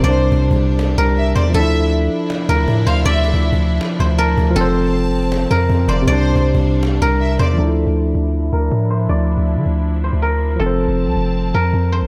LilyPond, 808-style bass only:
\new Staff \with { instrumentName = "808-style bass" } { \clef bass \time 4/4 \key d \minor \tempo 4 = 159 c,8. c,8 c,4~ c,16 c,4 e,8 | d,4. r4 d,8 a,8 d,8 | d,8. d,8 d,8. r8 d,4 d,8 | f,,2~ f,,8 f,8 f,8 f,,8 |
c,8. c,8 c,4~ c,16 c,4 e,8 | d,8. d,8. d,4 d,8 a,4 | d,8. d,8 d16 d,4~ d,16 d,4~ d,16 | f,,8. f,,8 c,16 f,,4 f,8 f,8. a,,16 | }